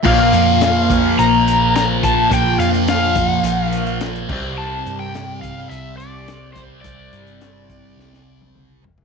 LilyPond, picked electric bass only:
\new Staff \with { instrumentName = "Picked electric bass" } { \clef bass \time 4/4 \key c \major \tempo 4 = 106 bes,,8 f,4. bes,,2 | bes,,8 f,4. bes,,4. c,8~ | c,8 g,4. c,2 | c,8 g,4. c,2 | }